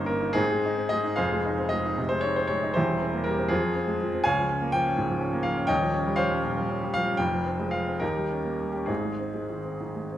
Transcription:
Already playing: G1 G2 A#3 C#4 D#4 C5
0.06 A#3 A#4
0.21 D#4
0.33 G#2 C4 D#4 G#4
0.51 G#3
0.66 D#4
0.77 C4
0.89 G#3 D#5
1.04 D#4
1.16 F1 F2 G#4 C5 F5
1.32 G#3
1.45 D#4
1.58 C4
1.69 G#3 D#5
1.86 D#4
1.98 C3
2.09 G#3 C5
2.21 D#4 C#5
2.36 C4 C5
2.47 G#3 C#5
2.63 D#4
2.74 E1 E2 E4 G4 C5
2.90 G3
3.02 C4
3.14 A#3
3.24 G3 A#4
3.38 C4
3.48 F2 C4 F4 G#4
3.63 F3
3.75 C4
3.87 G#3
4.02 F3
4.14 C4
4.24 C#2 C#5 F5 G#5
4.39 F3
4.49 C#4
4.62 A#3
4.72 F3 G5
4.87 C#4
4.97 G#2
5.09 F3
5.21 C#4
5.33 A#3
5.43 F3 F5
5.57 C#4
5.67 D#1 D#2 C#5 D#5 G5
5.82 F3
5.94 C#4
6.06 G3
6.16 F3 C5 C#5 F5
6.31 C#4
6.44 A#2
6.57 F3
6.69 C#4
6.83 G3
6.94 F3 F5
7.07 C#4
7.17 F1 F2 G5
7.33 F3
7.46 C4
7.59 G#3
7.71 F3 F5
7.87 C4
8.00 D#2 D#4 G4 A#4
8.16 G3
8.30 C#4
8.45 A#3
8.61 G3
8.72 C#4 G4
8.86 G#1 G#2 C4 D#4 G#4
9.04 G#3
9.20 C4
9.34 G#3
9.50 D#3
9.66 C4
9.81 D#3
9.96 G#3
10.12 C4

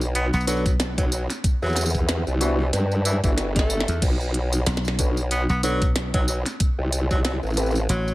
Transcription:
Already playing: B1
0.01 tambourine
0.15 B3, closed hi-hat, tambourine
0.34 B1 B3, tambourine
0.41 tambourine
0.47 F#3 D4 F#4 A4 B4, closed hi-hat, tambourine
0.57 tambourine
0.66 kick, closed hi-hat, tambourine
0.80 snare, closed hi-hat, tambourine
0.98 B1 F#3, kick, closed hi-hat, tambourine
1.12 F#3, tambourine
1.30 snare, closed hi-hat, tambourine
1.44 kick, closed hi-hat, tambourine
1.62 E2 F#3, tambourine
1.66 tambourine
1.70 tambourine
1.73 snare, closed hi-hat, tambourine
1.76 tambourine
1.81 tambourine
1.86 tambourine
1.90 tambourine
1.95 kick, tambourine
2.09 snare, closed hi-hat, tambourine
2.27 C2, tambourine
2.41 E3 B3 D4 E4 F#4, closed hi-hat, tambourine
2.59 E3
2.73 G2, snare, closed hi-hat, tambourine
2.91 tambourine
3.05 E3, closed hi-hat, tambourine
3.24 G1 E3 B3 D4 E4 F#4, kick, closed hi-hat, tambourine
3.38 snare, closed hi-hat, tambourine
3.56 A3, kick, snare, closed hi-hat, tambourine
3.70 tambourine
3.80 snare
3.88 E2, closed hi-hat, tambourine
4.02 B1, kick, closed hi-hat, tambourine, crash
4.20 tambourine
4.34 closed hi-hat
4.53 tambourine
4.66 B1, snare, closed hi-hat, tambourine
4.77 snare
4.85 snare, tambourine
4.99 B1 D4 F#4 A4 B4, kick, closed hi-hat, tambourine
5.17 tambourine
5.31 B3, closed hi-hat, tambourine
5.49 B1 B3, tambourine
5.63 F#3 D4 F#4 A4 B4, closed hi-hat, tambourine
5.82 kick, closed hi-hat, tambourine
5.96 snare, closed hi-hat, tambourine
6.14 B1 F#3, kick, closed hi-hat
6.28 F#3, tambourine
6.46 snare, closed hi-hat, tambourine
6.60 kick, closed hi-hat, tambourine
6.79 C2
6.93 closed hi-hat, tambourine
7.11 F#3, kick, tambourine
7.25 F#3, snare, closed hi-hat, tambourine
7.43 A1, tambourine
7.47 tambourine
7.50 tambourine
7.54 C4 G4 A4 B4, closed hi-hat, tambourine
7.57 tambourine
7.62 tambourine
7.66 tambourine
7.71 tambourine
7.75 tambourine
7.89 A1 F#3, closed hi-hat, tambourine
8.08 tambourine

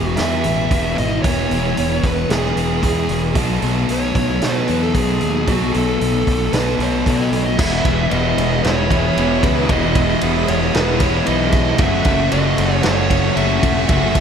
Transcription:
Already playing: E1 E2 B2 E3 B3 E4 G#4
0.09 F#4
0.16 E2 B2 E3 E5, snare, open hi-hat
0.20 B3 E4 G#4
0.44 A1 B2 E3, open hi-hat
0.71 E1 E2 B2 E3, kick, open hi-hat
0.98 G#1 B2 E3 D#5, open hi-hat
1.22 E1 E2 B2 E3 B3 C#5, kick, open hi-hat
1.26 E3 E4 G#4
1.51 E1 B2 E3, open hi-hat
1.77 E1 E2 B2 E3, open hi-hat
2.03 E1 B4, kick, open hi-hat
2.29 E1 E2 B2 E3 B3 E4 G#4, snare, open hi-hat
2.45 snare
2.56 E1 B2 E3, open hi-hat
2.83 E2 B2 E3 G#4, kick, open hi-hat
3.09 E1 B2 E3, open hi-hat
3.34 B1 B2 F#3 A3 D#4 A4, kick, open hi-hat
3.38 B3
3.62 B1 F#3 B3, open hi-hat
3.89 B1 B2 F#3 B3 C#5, open hi-hat
4.15 B1, kick, open hi-hat
4.41 B2 F#3 A3 D#4 A4 B4, snare, open hi-hat
4.68 E2 F#3 B3, open hi-hat
4.83 A4
4.94 B1 B2 F#3 B3 G#4, kick, open hi-hat
5.21 D#2 F#3 B3, open hi-hat
5.47 B1 B2 F#3 A3 D#4 F#4 A4, kick, open hi-hat
5.51 B3
5.72 B1 F#3 B3 A4, open hi-hat
6.01 B1 B2 F#3 B3, open hi-hat
6.27 B1, kick, open hi-hat
6.52 B1 B2 F#3 A3 D#4 A4 B4, snare, open hi-hat
6.78 B1 F#3 B3, open hi-hat
6.83 C#5
7.06 B2 F#3 B3 A4 D#5, kick, open hi-hat
7.32 B1 F#3 B3, open hi-hat
7.58 E1 E2 B2 E3 G#3 B3 E4 G#4 E5 B5 D#6, kick, crash
7.85 E1, kick, ride
8.10 E1 E2 B2 E3 G#3 B3 E4 D#5, ride
8.37 E1, ride
8.63 E1 E2 B2 E3 G#3 B3 E4 C#5, snare, ride
8.90 B2 E3 G#3 B3 E4, kick, ride
9.16 E1 E2 B2 E3 G#3 B3 E4, ride
9.43 C#2 B4, kick, ride
9.68 E1 E2 B2 E3 G#3 B3 E4 D#5, kick, ride
9.95 kick, ride
10.20 E1 E2 B2 E3 G#3 B3 E4, ride
10.25 E3
10.48 E1 C#5, ride
10.74 E1 E2 B2 E3 G#3 B3 E4 B4, snare, ride
11.00 B2 E3 G#3 B3 E4 C#5, kick, ride
11.26 B1 E2 B2 E3 G#3 B3 E4 D#5, ride
11.52 kick, ride
11.78 F#1 F#2 C#3 F#3 A3 C#4 F#4 A4 E5 F#5 C#6, kick, ride
12.05 F#1, kick, ride
12.32 F#1 F#2 C#3 F#3 A3 C#4 F#4 D#5, ride
12.58 F#1, ride
12.83 F#1 F#2 C#3 F#3 A3 C#4 F#4 C#5, snare, ride
13.10 C#3 F#3 A3 C#4 F#4, kick, ride
13.36 F#1 F#2 C#3 F#3 A3 C#4 F#4 E5, ride
13.63 E1, kick, ride
13.88 F#1 F#2 C#3 F#3 A3 C#4 F#4 E5, kick, ride
14.15 kick, ride

